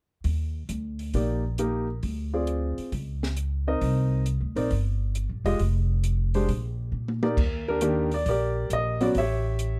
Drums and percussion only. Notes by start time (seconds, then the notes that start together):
0.24 kick, open hi-hat
0.69 closed hi-hat
0.99 open hi-hat
1.14 kick, open hi-hat
1.58 closed hi-hat
2.03 kick, open hi-hat
2.47 closed hi-hat
2.78 open hi-hat
2.92 kick, open hi-hat
3.23 snare
3.37 closed hi-hat
3.81 kick, open hi-hat
4.26 closed hi-hat
4.56 open hi-hat
4.71 kick, open hi-hat
5.15 closed hi-hat
5.46 open hi-hat
5.59 kick, open hi-hat
6.04 closed hi-hat
6.34 open hi-hat
6.49 kick, open hi-hat
7.08 high tom
7.23 high tom
7.37 kick, crash
7.81 closed hi-hat
8.11 open hi-hat
8.26 kick, open hi-hat
8.70 closed hi-hat
9.01 open hi-hat
9.15 kick, open hi-hat
9.59 closed hi-hat